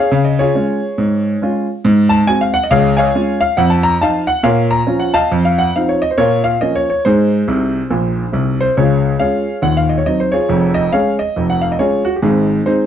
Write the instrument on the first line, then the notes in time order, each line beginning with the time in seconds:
grand piano
Already playing: G#4 C#5 F5
0.12 C#3
0.25 D#5
0.39 F4 G#4 C#5
0.55 G#3 C#4 F4
0.98 G#2
1.42 G#3 C#4 F4
1.85 G#2
2.09 A5
2.27 G#3 C4 F#4 G#5
2.41 F5
2.54 F#5
2.63 D#5
2.71 C#2 G#4 C#5 F5
2.97 C#5 F5 G#5
3.15 G#3 C#4 F4
3.41 F5
3.57 F2 F#5
3.70 A5
3.83 A#5
4.01 F3 D#4 F4 D#5 F5 A5
4.27 F#5
4.43 A#2 A#4 C#5 F5
4.71 A#5
4.87 F3 C#4 F4
5.00 F#5
5.14 D#5 F5 A5
5.32 F2
5.45 F5
5.58 F#5
5.76 F3 C4 D#4 F5
5.89 C#5
6.02 D#5
6.11 C5
6.18 A#2 F4 A#4 C#5
6.44 F5
6.61 F3 A#3 C#4 D#5
6.75 C#5
6.90 C#5
7.05 G#2 D#4 G#4 C5
7.48 C2 C3
7.90 A#1 A#2
8.32 C2 C3
8.61 C5
8.77 C#2 C#3 F4 G#4 C#5
9.20 G#3 C#4 F4 G#4 C#5 F5
9.62 D#1 D#2 F#5
9.77 F5
9.89 D#5
9.98 C#5
10.06 F#3 C4 D#4 D#5
10.20 C5
10.32 F4 G#4 C#5
10.49 F1 F2
10.74 D#5
10.92 G#3 C#4 G#4 C#5 F5
11.19 D#5
11.36 F1 F2
11.50 F#5
11.62 F5
11.72 D#5
11.79 G#3 C#4 F4 G#4 C#5
12.05 F#4
12.16 G4
12.22 G#1 G#2 C4 D#4 G#4
12.65 G#3 C4 D#4 G#4 C5